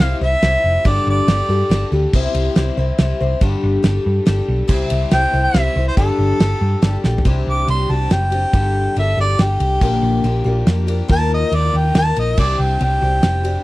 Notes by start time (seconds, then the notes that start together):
Already playing: G5
0.00 C2 G3 C4 E4 C5 F5, snare, ride
0.21 C2 C4 E4 C5 E5
0.42 C2 G3 C4 E4 C5, snare, ride
0.64 F1
0.85 G1 G2 D3 G3 D4 G4 A4 D5, kick, ride
1.07 G1 D5
1.28 G1 G3 D4 G4 A4, snare, ride
1.49 G2 G3 D4 G4 A4
1.70 G1 G3 D4 G4 A4, snare, ride
1.92 D2 G3 D4 G4 A4
2.13 C2 C3 G3 C4 E4 C5, kick, crash
2.34 C2, ride
2.55 C2 G3 C4 E4 C5, snare, ride
2.77 C2 C4 E4 C5
2.98 C2 G3 C4 E4, snare, ride
3.02 C5
3.21 C2 C4 E4 C5
3.41 G1 G2 D3 G3 D4 G4 A4, kick, ride
3.63 G1
3.83 G1 G3 D4 G4 A4, snare, ride
4.06 G2
4.26 G1 G3 D4 G4 A4, snare, ride
4.48 B1
4.68 C2 C3 G3 C4 E4 C5, kick, crash
4.90 C2, ride
5.11 C2 G3 C4 E4 C5 G5, snare, ride
5.33 C2 C4 E4 C5
5.46 E5
5.54 C2 G3 C4 E4 C5, snare, ride
5.76 C2 C4 E4 C5
5.88 C5
5.97 G1 G2 D3 G3 D4 G4 A4, kick, ride
6.19 G1
6.40 G1 G3 D4 G4 A4, snare, ride
6.61 G2
6.82 G1 G3 D4 G4 A4, snare, ride
7.04 A#1 G3 D4 G4 A4, snare
7.18 floor tom
7.25 C2 C3 E3 G3 C4 D4 G4, kick, ride
7.47 C2 D6
7.68 C2 G3 C4 D4 G4 C6, ride
7.89 C2 G3 C4 D4 G4 A5
8.10 F#1 G3 C4 D4 G4 G5, snare, ride
8.31 G3 C4 D4 G4, ride
8.53 G1 G2 D3 G3 D4 G4 A4, kick, ride
8.96 G1 G3 D4 G4 A4 E5, ride
9.17 G1 G3 D4 G4 A4 D5
9.39 G1 G3 D4 G4 A4, snare, ride
9.60 C2, ride
9.81 A#1 A#2 D3 F3 A#3 D4 G4, kick, crash
10.02 A#1
10.24 A#1 F3 A#3 D4 G4, ride
10.44 A#1 F3 A#3 D4 G4
10.67 F2 F3 A#3 D4 G4, snare, ride
10.87 F3 A#3 D4 G4, ride
11.08 D#2 D#3 F3 A#3 F4 A#4 A5, kick, ride
11.34 D#5
11.50 D#2 F3 A#3 F4 A#4, ride
11.55 D5
11.74 D#2 G5
11.93 D#2 F3 A#3 F4 A#4, snare, ride
11.98 A5
12.16 A#1 D#5, ride
12.37 C2 C3 E3 G3 C4 D4 G4 D5, kick, crash
12.59 C2 G5
12.79 C2 G3 C4 D4 G4 G5, ride
13.01 C2 G3 C4 D4 G4
13.21 F1 G3 C4 D4 G4, snare, ride
13.44 G3 C4 D4 G4, ride